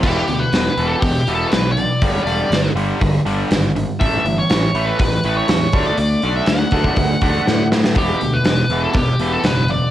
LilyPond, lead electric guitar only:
\new Staff \with { instrumentName = "Lead electric guitar" } { \time 4/4 \key e \dorian \tempo 4 = 121 g'8. b'4 a'16 g'8. a'16 b'8 d''8~ | d''8 d''4 r2 r8 | e''8. cis''4 b'4 cis''4 d''16 | d''8. e''16 fis''2~ fis''8 r8 |
g'8. b'4 a'16 g'8. a'16 b'8 d''8 | }